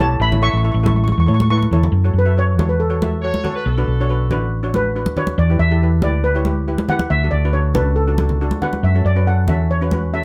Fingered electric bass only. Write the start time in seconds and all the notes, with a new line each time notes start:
0.00 B1
0.20 A1
0.53 A1
0.74 A1
1.18 E2
1.28 A2
1.71 E2
1.92 F#2
2.13 F#2
2.57 E2
3.66 B1
3.88 B1
4.31 A1
5.38 E2
5.59 E2
6.01 D2
7.10 D2
7.32 D2
7.76 C#2
8.83 F#2
9.05 F#2
9.48 E2